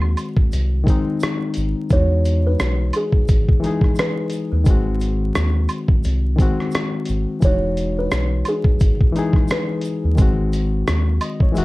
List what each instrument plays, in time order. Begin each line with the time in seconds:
Already playing: analog synth bass D#2, reed electric piano D#3 G#3 C4 F#4
0.02 high woodblock
0.17 closed hi-hat, high woodblock, shaker
0.37 kick
0.52 analog synth bass C2, closed hi-hat, shaker
0.84 reed electric piano D#3 G#3, kick
0.88 reed electric piano C4 D#4, closed hi-hat, shaker
1.20 cross-stick, closed hi-hat, shaker
1.54 analog synth bass G#1, closed hi-hat, shaker
1.90 analog synth bass E2, reed electric piano E3 G#3, kalimba C#5, kick, closed hi-hat, shaker
1.94 reed electric piano D#4 F#4
2.25 closed hi-hat, shaker
2.47 kalimba B4
2.60 analog synth bass B1, cross-stick, closed hi-hat, shaker
2.93 kalimba G#4, closed hi-hat, high woodblock, shaker
3.12 kick
3.28 analog synth bass G#1, kick, closed hi-hat, shaker
3.49 kick
3.60 reed electric piano E3 G#3, closed hi-hat, shaker
3.64 reed electric piano D#4 G#4
3.81 kick, cross-stick
3.95 cross-stick, closed hi-hat, shaker
4.00 kalimba B4
4.30 closed hi-hat, shaker
4.52 analog synth bass D#2
4.64 analog synth bass G#1, reed electric piano D#3 G#3, kick, closed hi-hat, shaker
4.68 reed electric piano C4 F#4
5.00 closed hi-hat, shaker
5.35 analog synth bass D#2, cross-stick, closed hi-hat, shaker
5.69 closed hi-hat, high woodblock, shaker
5.88 kick
6.03 analog synth bass C2, closed hi-hat, shaker
6.36 reed electric piano D#3 G#3, kick, closed hi-hat, shaker
6.40 reed electric piano C4 F#4
6.60 cross-stick
6.71 cross-stick, closed hi-hat, shaker
7.06 analog synth bass G#1, closed hi-hat, shaker
7.40 analog synth bass E1, reed electric piano E3 G#3, kick, closed hi-hat, shaker
7.45 reed electric piano D#4 F#4, kalimba C#5
7.77 closed hi-hat, shaker
7.99 kalimba B4
8.11 analog synth bass B1, cross-stick, closed hi-hat, shaker
8.45 kalimba G#4, closed hi-hat, high woodblock, shaker
8.64 kick
8.80 analog synth bass G#1, kick, closed hi-hat, shaker
9.01 kick
9.12 reed electric piano E3 G#3, closed hi-hat, shaker
9.17 reed electric piano D#4 G#4
9.33 kick, cross-stick
9.48 cross-stick, closed hi-hat, shaker
9.52 kalimba B4
9.81 closed hi-hat, shaker
10.04 analog synth bass D#2
10.15 analog synth bass G#1, reed electric piano D#3 G#3, kick, closed hi-hat, shaker
10.19 reed electric piano C4 F#4
10.53 closed hi-hat, shaker
10.87 analog synth bass D#2, cross-stick, closed hi-hat, shaker
11.21 reed electric piano D#5, closed hi-hat, high woodblock, shaker
11.40 reed electric piano C#5, kick
11.52 reed electric piano E3 G#3 E5, shaker
11.56 analog synth bass E1, reed electric piano D#3 F#4, closed hi-hat